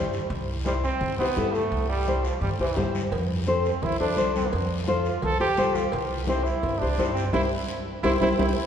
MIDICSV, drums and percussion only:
0, 0, Header, 1, 2, 480
1, 0, Start_track
1, 0, Key_signature, 0, "major"
1, 0, Tempo, 351288
1, 425, Time_signature, 4, 2, 24, 8
1, 11837, End_track
2, 0, Start_track
2, 0, Title_t, "Drums"
2, 176, Note_on_c, 9, 73, 78
2, 312, Note_off_c, 9, 73, 0
2, 413, Note_on_c, 9, 74, 67
2, 429, Note_on_c, 9, 63, 37
2, 550, Note_off_c, 9, 74, 0
2, 565, Note_off_c, 9, 63, 0
2, 895, Note_on_c, 9, 73, 70
2, 900, Note_on_c, 9, 63, 93
2, 1032, Note_off_c, 9, 73, 0
2, 1036, Note_off_c, 9, 63, 0
2, 1144, Note_on_c, 9, 73, 73
2, 1280, Note_off_c, 9, 73, 0
2, 1378, Note_on_c, 9, 74, 78
2, 1384, Note_on_c, 9, 63, 32
2, 1384, Note_on_c, 9, 64, 86
2, 1515, Note_off_c, 9, 74, 0
2, 1521, Note_off_c, 9, 63, 0
2, 1521, Note_off_c, 9, 64, 0
2, 1866, Note_on_c, 9, 63, 90
2, 1869, Note_on_c, 9, 73, 77
2, 2002, Note_off_c, 9, 63, 0
2, 2006, Note_off_c, 9, 73, 0
2, 2112, Note_on_c, 9, 73, 70
2, 2249, Note_off_c, 9, 73, 0
2, 2349, Note_on_c, 9, 74, 68
2, 2359, Note_on_c, 9, 63, 33
2, 2486, Note_off_c, 9, 74, 0
2, 2496, Note_off_c, 9, 63, 0
2, 2829, Note_on_c, 9, 73, 70
2, 2840, Note_on_c, 9, 63, 94
2, 2965, Note_off_c, 9, 73, 0
2, 2976, Note_off_c, 9, 63, 0
2, 3068, Note_on_c, 9, 73, 69
2, 3204, Note_off_c, 9, 73, 0
2, 3307, Note_on_c, 9, 74, 68
2, 3328, Note_on_c, 9, 63, 34
2, 3328, Note_on_c, 9, 64, 83
2, 3444, Note_off_c, 9, 74, 0
2, 3464, Note_off_c, 9, 63, 0
2, 3464, Note_off_c, 9, 64, 0
2, 3782, Note_on_c, 9, 73, 71
2, 3794, Note_on_c, 9, 63, 87
2, 3794, Note_on_c, 9, 64, 80
2, 3919, Note_off_c, 9, 73, 0
2, 3930, Note_off_c, 9, 63, 0
2, 3930, Note_off_c, 9, 64, 0
2, 4030, Note_on_c, 9, 73, 75
2, 4031, Note_on_c, 9, 63, 72
2, 4167, Note_off_c, 9, 73, 0
2, 4168, Note_off_c, 9, 63, 0
2, 4267, Note_on_c, 9, 56, 106
2, 4271, Note_on_c, 9, 63, 33
2, 4274, Note_on_c, 9, 74, 72
2, 4404, Note_off_c, 9, 56, 0
2, 4408, Note_off_c, 9, 63, 0
2, 4410, Note_off_c, 9, 74, 0
2, 4746, Note_on_c, 9, 63, 94
2, 4746, Note_on_c, 9, 73, 67
2, 4883, Note_off_c, 9, 63, 0
2, 4883, Note_off_c, 9, 73, 0
2, 4988, Note_on_c, 9, 73, 73
2, 5124, Note_off_c, 9, 73, 0
2, 5229, Note_on_c, 9, 56, 82
2, 5230, Note_on_c, 9, 74, 73
2, 5231, Note_on_c, 9, 63, 32
2, 5231, Note_on_c, 9, 64, 85
2, 5366, Note_off_c, 9, 56, 0
2, 5367, Note_off_c, 9, 74, 0
2, 5368, Note_off_c, 9, 63, 0
2, 5368, Note_off_c, 9, 64, 0
2, 5708, Note_on_c, 9, 63, 88
2, 5711, Note_on_c, 9, 73, 77
2, 5845, Note_off_c, 9, 63, 0
2, 5848, Note_off_c, 9, 73, 0
2, 5955, Note_on_c, 9, 73, 78
2, 5960, Note_on_c, 9, 63, 79
2, 6091, Note_off_c, 9, 73, 0
2, 6096, Note_off_c, 9, 63, 0
2, 6184, Note_on_c, 9, 56, 104
2, 6193, Note_on_c, 9, 74, 76
2, 6203, Note_on_c, 9, 63, 35
2, 6321, Note_off_c, 9, 56, 0
2, 6329, Note_off_c, 9, 74, 0
2, 6340, Note_off_c, 9, 63, 0
2, 6668, Note_on_c, 9, 63, 99
2, 6668, Note_on_c, 9, 73, 65
2, 6805, Note_off_c, 9, 63, 0
2, 6805, Note_off_c, 9, 73, 0
2, 6903, Note_on_c, 9, 73, 73
2, 7040, Note_off_c, 9, 73, 0
2, 7134, Note_on_c, 9, 56, 88
2, 7139, Note_on_c, 9, 63, 35
2, 7139, Note_on_c, 9, 64, 86
2, 7145, Note_on_c, 9, 74, 74
2, 7271, Note_off_c, 9, 56, 0
2, 7276, Note_off_c, 9, 63, 0
2, 7276, Note_off_c, 9, 64, 0
2, 7282, Note_off_c, 9, 74, 0
2, 7619, Note_on_c, 9, 73, 78
2, 7621, Note_on_c, 9, 66, 67
2, 7623, Note_on_c, 9, 63, 92
2, 7623, Note_on_c, 9, 64, 73
2, 7756, Note_off_c, 9, 73, 0
2, 7758, Note_off_c, 9, 66, 0
2, 7760, Note_off_c, 9, 63, 0
2, 7760, Note_off_c, 9, 64, 0
2, 7855, Note_on_c, 9, 63, 77
2, 7860, Note_on_c, 9, 73, 77
2, 7992, Note_off_c, 9, 63, 0
2, 7997, Note_off_c, 9, 73, 0
2, 8088, Note_on_c, 9, 56, 98
2, 8095, Note_on_c, 9, 63, 34
2, 8108, Note_on_c, 9, 74, 69
2, 8224, Note_off_c, 9, 56, 0
2, 8231, Note_off_c, 9, 63, 0
2, 8245, Note_off_c, 9, 74, 0
2, 8571, Note_on_c, 9, 63, 102
2, 8584, Note_on_c, 9, 73, 63
2, 8707, Note_off_c, 9, 63, 0
2, 8721, Note_off_c, 9, 73, 0
2, 8828, Note_on_c, 9, 73, 74
2, 8965, Note_off_c, 9, 73, 0
2, 9059, Note_on_c, 9, 56, 78
2, 9062, Note_on_c, 9, 63, 34
2, 9062, Note_on_c, 9, 64, 79
2, 9072, Note_on_c, 9, 74, 68
2, 9196, Note_off_c, 9, 56, 0
2, 9199, Note_off_c, 9, 63, 0
2, 9199, Note_off_c, 9, 64, 0
2, 9208, Note_off_c, 9, 74, 0
2, 9537, Note_on_c, 9, 63, 79
2, 9546, Note_on_c, 9, 66, 76
2, 9560, Note_on_c, 9, 73, 75
2, 9673, Note_off_c, 9, 63, 0
2, 9683, Note_off_c, 9, 66, 0
2, 9697, Note_off_c, 9, 73, 0
2, 9794, Note_on_c, 9, 73, 74
2, 9930, Note_off_c, 9, 73, 0
2, 10015, Note_on_c, 9, 63, 90
2, 10017, Note_on_c, 9, 65, 96
2, 10030, Note_on_c, 9, 74, 102
2, 10152, Note_off_c, 9, 63, 0
2, 10154, Note_off_c, 9, 65, 0
2, 10167, Note_off_c, 9, 74, 0
2, 10983, Note_on_c, 9, 65, 99
2, 10992, Note_on_c, 9, 74, 97
2, 10993, Note_on_c, 9, 63, 100
2, 11120, Note_off_c, 9, 65, 0
2, 11129, Note_off_c, 9, 74, 0
2, 11130, Note_off_c, 9, 63, 0
2, 11223, Note_on_c, 9, 65, 101
2, 11224, Note_on_c, 9, 63, 105
2, 11232, Note_on_c, 9, 74, 95
2, 11360, Note_off_c, 9, 63, 0
2, 11360, Note_off_c, 9, 65, 0
2, 11369, Note_off_c, 9, 74, 0
2, 11463, Note_on_c, 9, 63, 101
2, 11470, Note_on_c, 9, 74, 107
2, 11473, Note_on_c, 9, 65, 92
2, 11600, Note_off_c, 9, 63, 0
2, 11606, Note_off_c, 9, 74, 0
2, 11610, Note_off_c, 9, 65, 0
2, 11837, End_track
0, 0, End_of_file